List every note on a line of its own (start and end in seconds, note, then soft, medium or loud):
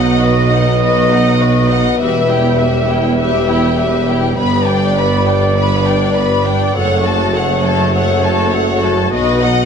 0.00 1.95 B1 medium
0.00 1.95 B2 medium
0.00 1.95 F#3 medium
0.00 0.21 D#4 medium
0.00 4.32 B4 medium
0.00 0.21 D#5 medium
0.00 1.95 D#5 medium
0.00 0.21 F#5 medium
0.21 0.50 F#4 medium
0.21 0.51 B4 medium
0.21 0.51 D#5 medium
0.51 0.80 D#4 medium
0.51 0.80 D#5 medium
0.51 0.81 F#5 medium
0.80 1.08 F#4 medium
0.80 1.08 B4 medium
0.80 1.09 D#5 medium
1.10 1.39 D#4 medium
1.10 1.40 D#5 medium
1.10 1.40 F#5 medium
1.40 1.69 F#4 medium
1.40 1.69 B4 medium
1.40 1.70 D#5 medium
1.68 1.98 D#4 medium
1.68 1.99 D#5 medium
1.68 2.00 F#5 medium
1.98 4.33 E1 medium
1.98 4.39 E1 medium
1.98 4.33 E2 medium
1.98 6.70 G3 medium
1.98 2.26 G4 medium
1.98 2.26 B4 medium
1.98 4.21 E5 medium
1.98 2.27 E5 medium
2.29 2.58 E4 medium
2.29 2.59 G4 medium
2.29 2.58 G5 medium
2.57 2.88 G4 medium
2.57 2.88 B4 medium
2.57 2.87 E5 medium
2.89 3.18 E4 medium
2.89 3.18 G4 medium
2.89 3.18 G5 medium
3.18 3.46 G4 medium
3.18 3.46 B4 medium
3.18 3.46 E5 medium
3.48 3.78 E4 medium
3.48 3.78 G4 medium
3.48 3.77 G5 medium
3.77 4.07 G4 medium
3.77 4.07 B4 medium
3.77 4.07 E5 medium
4.07 4.37 E4 medium
4.07 4.37 G4 medium
4.07 4.37 G5 medium
4.37 6.58 G1 medium
4.37 6.74 G1 medium
4.37 6.75 G2 medium
4.37 4.65 B3 medium
4.37 6.71 B4 medium
4.37 4.65 B4 medium
4.37 6.71 D5 medium
4.37 4.64 B5 medium
4.67 4.96 D4 medium
4.67 4.97 D5 medium
4.67 4.96 G5 medium
4.97 5.26 B3 medium
4.97 5.27 B4 medium
4.97 5.26 B5 medium
5.26 5.56 D4 medium
5.26 5.55 D5 medium
5.26 5.56 G5 medium
5.56 5.84 B3 medium
5.56 5.83 B4 medium
5.56 5.84 B5 medium
5.86 6.15 D4 medium
5.86 6.15 D5 medium
5.86 6.16 G5 medium
6.15 6.45 B3 medium
6.15 6.45 B4 medium
6.15 6.45 B5 medium
6.46 6.75 D4 medium
6.46 6.75 D5 medium
6.46 6.75 G5 medium
6.75 9.08 F#1 medium
6.75 9.08 F#1 loud
6.75 9.08 F#2 medium
6.75 9.08 A3 medium
6.75 9.65 F#4 medium
6.75 7.02 A4 medium
6.75 9.08 C#5 medium
6.75 7.03 C#5 medium
6.75 7.02 F#5 medium
7.05 7.34 F#4 medium
7.05 7.34 A4 medium
7.05 7.34 A5 medium
7.33 7.63 A4 medium
7.33 7.64 C#5 medium
7.33 7.64 F#5 medium
7.64 7.93 F#4 medium
7.64 7.93 A4 medium
7.64 7.94 A5 medium
7.93 8.20 A4 medium
7.93 8.20 C#5 medium
7.93 8.22 F#5 medium
8.23 8.52 F#4 medium
8.23 8.52 A4 medium
8.23 8.53 A5 medium
8.52 8.82 A4 medium
8.52 8.82 C#5 medium
8.52 8.83 F#5 medium
8.82 9.11 F#4 medium
8.82 9.12 A4 medium
8.82 9.13 A5 medium
9.09 9.65 B1 medium
9.09 9.65 B1 loud
9.09 9.65 B2 medium
9.09 9.65 B3 medium
9.09 9.39 F#4 medium
9.09 9.40 B4 medium
9.09 9.65 D#5 medium
9.09 9.40 D#5 medium
9.41 9.65 D#4 medium
9.41 9.65 D#5 medium
9.41 9.65 F#5 medium